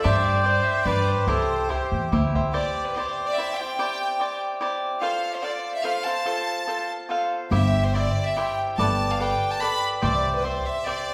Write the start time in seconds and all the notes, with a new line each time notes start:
0.02 G2 D4 G4 C5 D5 E5
0.22 D5
0.44 D4 G4 C5 D5
0.64 E5
0.83 G2 G4 B4 D5
0.87 D4 B4 D5
1.07 C5
1.27 C2 E4 G4 A4 C5 E5
1.69 E4 G4 C5 E5
1.92 E2
2.12 D2 E4 G4 C5 E5
2.34 C2 G4 C5 E5
2.53 E4 G4 C5 D5
2.85 B4
2.95 E4 G4 C5 D5
3.26 D5
3.35 E4 G4 E5
3.39 C5 D5
3.56 G5
3.60 G4 C5 D5
3.79 E4 G4 C5 D5
4.20 E4 G4 C5 D5
4.61 E4 G4 C5 D5
5.01 F4 A4 C5 F5
5.35 C5
5.42 F4 A4 C5 D5 F5
5.74 E5
5.83 F4 A4 C5 F5
6.05 A4 C5 F5 A5
6.25 F4 A4 C5 F5
6.68 F4 A4 C5 F5
7.09 F4 A4 C5 F5
7.51 G1 E4 G4 C5 E5
7.85 C5
7.94 E4 G4 C5 D5 E5
8.25 E5
8.36 E4 G4 C5 E5 G5
8.78 G1 G4 A4 B4 D5 A5
9.11 F5
9.20 G4 A4 B4 D5 G5
9.52 A5
9.61 G4 A4 B4 D5 B5
10.01 C2 G4 C5 D5 E5
10.36 B4
10.44 G4 C5 D5 E5
10.66 E5
10.85 G4 C5 D5 E5